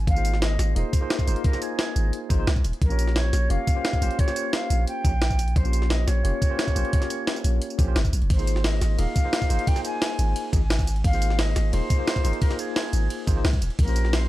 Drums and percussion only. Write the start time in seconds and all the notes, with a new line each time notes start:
0.07 kick, closed hi-hat
0.16 tambourine
0.25 closed hi-hat, tambourine
0.33 snare
0.42 snare, closed hi-hat
0.59 snare, closed hi-hat, tambourine
0.76 closed hi-hat
0.93 kick, closed hi-hat, tambourine
1.10 snare, closed hi-hat
1.19 kick, tambourine
1.27 closed hi-hat, tambourine
1.36 closed hi-hat
1.44 kick, closed hi-hat
1.53 snare, tambourine
1.62 closed hi-hat, tambourine
1.79 snare, closed hi-hat
1.96 closed hi-hat, tambourine
2.13 closed hi-hat
2.30 kick, closed hi-hat, tambourine
2.47 snare, closed hi-hat
2.56 kick, tambourine
2.64 closed hi-hat, tambourine
2.73 closed hi-hat
2.82 kick, closed hi-hat
2.90 tambourine
2.99 closed hi-hat, tambourine
3.07 snare
3.16 snare, closed hi-hat
3.33 snare, closed hi-hat, tambourine
3.50 closed hi-hat
3.67 kick, closed hi-hat, tambourine
3.85 snare, closed hi-hat
3.93 kick, tambourine
4.02 closed hi-hat, tambourine
4.11 closed hi-hat
4.19 kick, closed hi-hat
4.28 snare, tambourine
4.36 closed hi-hat, tambourine
4.53 snare, closed hi-hat
4.70 closed hi-hat, tambourine
4.87 closed hi-hat
5.05 kick, closed hi-hat, tambourine
5.22 snare, closed hi-hat
5.30 kick, tambourine
5.39 closed hi-hat, tambourine
5.48 closed hi-hat
5.56 kick, closed hi-hat
5.65 tambourine
5.73 closed hi-hat, tambourine
5.82 snare
5.90 snare, closed hi-hat
6.08 snare, closed hi-hat, tambourine
6.25 closed hi-hat
6.42 kick, closed hi-hat, tambourine
6.59 snare, closed hi-hat
6.68 kick, tambourine
6.76 closed hi-hat, tambourine
6.85 closed hi-hat
6.93 kick, closed hi-hat
7.02 snare, closed hi-hat, tambourine
7.10 closed hi-hat, tambourine
7.27 snare, closed hi-hat
7.36 tambourine
7.44 closed hi-hat, tambourine
7.62 closed hi-hat
7.70 tambourine
7.79 kick, closed hi-hat, tambourine
7.96 snare, closed hi-hat
8.05 kick, tambourine
8.13 closed hi-hat, tambourine
8.22 closed hi-hat
8.30 kick, closed hi-hat, ride
8.39 tambourine
8.47 closed hi-hat, tambourine
8.56 snare
8.64 snare, closed hi-hat, ride
8.81 snare, closed hi-hat, tambourine
8.99 closed hi-hat, ride
9.16 kick, closed hi-hat, tambourine
9.33 snare, closed hi-hat, ride
9.42 kick, tambourine
9.50 closed hi-hat, tambourine
9.59 closed hi-hat
9.67 kick, closed hi-hat, ride
9.76 snare, tambourine
9.85 closed hi-hat, tambourine
10.02 snare, closed hi-hat, ride
10.19 closed hi-hat, tambourine
10.36 closed hi-hat, ride
10.53 kick, closed hi-hat, tambourine
10.70 snare, closed hi-hat, ride
10.79 kick, tambourine
10.87 closed hi-hat, tambourine
10.96 closed hi-hat
11.04 kick, closed hi-hat, ride
11.13 tambourine
11.22 closed hi-hat, tambourine
11.30 snare
11.39 snare, closed hi-hat, ride
11.56 snare, closed hi-hat, tambourine
11.73 closed hi-hat, ride
11.90 kick, closed hi-hat, tambourine
12.08 snare, closed hi-hat, ride
12.16 kick, tambourine
12.25 closed hi-hat, tambourine
12.33 closed hi-hat
12.42 kick, closed hi-hat, ride
12.51 snare, tambourine
12.59 closed hi-hat, tambourine
12.76 snare, closed hi-hat, ride
12.93 closed hi-hat, tambourine
13.10 closed hi-hat, ride
13.27 kick, closed hi-hat, tambourine
13.45 snare, closed hi-hat, ride
13.53 kick, tambourine
13.62 closed hi-hat, tambourine
13.70 closed hi-hat
13.79 kick, closed hi-hat, ride
13.88 tambourine
13.96 closed hi-hat, tambourine
14.05 snare
14.13 snare, closed hi-hat, ride